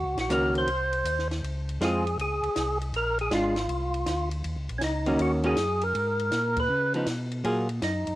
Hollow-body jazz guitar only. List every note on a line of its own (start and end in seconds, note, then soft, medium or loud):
0.30 0.67 D#3 medium
0.30 0.68 A#3 medium
0.30 0.68 C#4 medium
0.30 0.68 F#4 medium
1.81 2.03 G#3 medium
1.81 2.04 C4 medium
1.81 2.04 F4 medium
3.31 3.54 G#3 medium
3.31 3.54 D4 medium
3.31 3.54 F4 medium
5.06 5.42 D#3 medium
5.06 5.42 A#3 medium
5.06 5.42 C#4 medium
5.06 5.42 F#4 medium
5.43 5.55 D#3 medium
5.43 5.56 A#3 medium
5.43 5.56 C#4 medium
5.43 5.56 F#4 medium
6.95 7.06 F3 soft
6.95 7.07 B3 medium
6.95 7.07 D#4 medium
7.44 7.67 F#3 soft
7.44 7.67 A#3 soft
7.44 7.67 F4 soft
7.44 7.67 G#4 medium